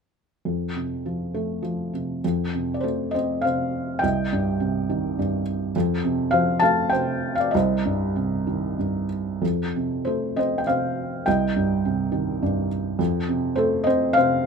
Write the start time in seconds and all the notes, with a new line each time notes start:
0.45 F2
0.76 C3
1.06 F3
1.34 A3
1.62 F3
1.93 C3
2.24 F2
2.55 C3
2.74 D5
2.80 A3 A4 C5
3.11 C4 C5 D#5
3.41 C3 C5 F5
3.99 D#5 G5
4.03 C2
4.33 G2
4.60 C3
4.89 D#3
5.19 G2
5.76 F2
6.04 C3
6.31 F3 C5 F5
6.60 A3 F5 A5
6.90 C3 C5 G5
7.35 F5
7.40 D5
7.51 C2 D#5
7.56 C5
7.86 G2
8.16 C3
8.47 D#3
8.79 G2
9.42 F2
9.76 C3
10.05 A3 A4 C5
10.36 C4 C5 D#5
10.58 G5
10.67 C3 C5 F5
11.26 C2 D#5 G5
11.56 G2
11.85 C3
12.12 D#3
12.43 G2
12.99 F2
13.29 C3
13.56 A3 A4 C5
13.84 C4 C5 D#5
14.13 C3 C5 F5